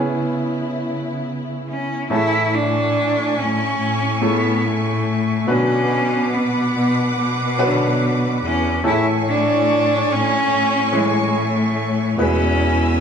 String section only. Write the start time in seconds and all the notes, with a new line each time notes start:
Already playing: C#3 B3 E4
2.10 A3 G#5 C#6
5.48 B4 F#5 D6
8.85 C#5 G#5 C#6
12.19 B4 G#5 E6